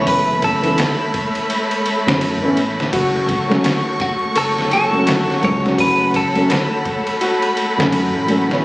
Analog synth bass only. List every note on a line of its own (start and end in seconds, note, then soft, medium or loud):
0.07 0.76 F#1 loud
2.07 2.37 F#2 loud
2.42 2.90 A1 loud
2.93 3.62 F#1 loud
4.36 5.24 F#1 medium
5.43 5.75 C#2 medium
5.79 6.47 F#1 loud
7.78 8.09 F#2 loud
8.14 8.61 A1 loud